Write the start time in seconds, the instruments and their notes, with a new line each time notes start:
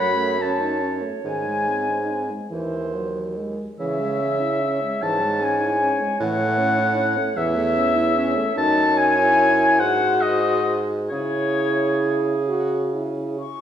Already playing: french horn F#3, clarinet C#5, flute B5
0.00 bassoon F#2, oboe B5
0.17 french horn A3
0.40 french horn C#4, flute A5, oboe A5
0.59 french horn D#4
0.81 french horn C#4
1.02 french horn A3
1.24 bassoon G#2, french horn D#3, flute G#5, oboe G#5
1.47 french horn G#3
1.69 french horn C4
1.89 french horn D#4
2.11 french horn C4
2.30 french horn G#3
2.50 bassoon D#2, french horn E3, clarinet C5
2.94 french horn F#3
3.37 french horn G#3
3.79 bassoon C#3, french horn E3, clarinet C#5, oboe E5, flute E5
4.01 french horn G#3
4.20 french horn C#4
4.40 french horn E4
4.61 french horn C#4
4.82 french horn G#3
5.02 bassoon G#2, french horn E3, flute A5, oboe A5
5.21 french horn G#3
5.41 french horn C#4, flute G#5
5.45 oboe G#5
5.62 french horn E4
5.83 french horn C#4
6.02 french horn G#3
6.20 bassoon A2, french horn E3, flute F#5, oboe F#5
6.40 french horn A3
6.59 french horn C#4
6.79 french horn E4
6.97 french horn C#4
7.17 french horn A3
7.37 bassoon E2, french horn E3, oboe E5, flute E5
7.55 french horn A3
7.75 french horn C#4
7.96 french horn E4
8.16 french horn C#4
8.36 french horn A3
8.56 bassoon F#2, french horn D#4, clarinet C#5, flute A5, oboe A5
8.97 flute G#5, oboe G#5
9.18 french horn E4
9.79 bassoon G#2, french horn F#4, clarinet C5, flute F#5, oboe F#5
10.21 oboe D#5, flute D#5
11.10 bassoon C#3, french horn E4, clarinet G#4, oboe C#5, flute C#5
12.49 french horn F#4
12.94 french horn E4
13.38 french horn G#4, flute C#6